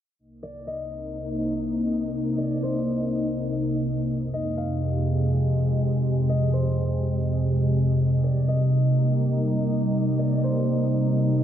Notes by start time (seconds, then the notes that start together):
0.19 C2 C3 A#3 D#4 D#5
0.43 D5
0.67 D#5
2.38 D5
2.63 C5
4.09 F2 G#3 G4 D#5
4.33 D#5
4.57 F5
6.29 D#5
6.53 C5
8.00 G3 A#3 D#4 D#5
8.24 D5
8.48 D#5
10.19 D5
10.44 C5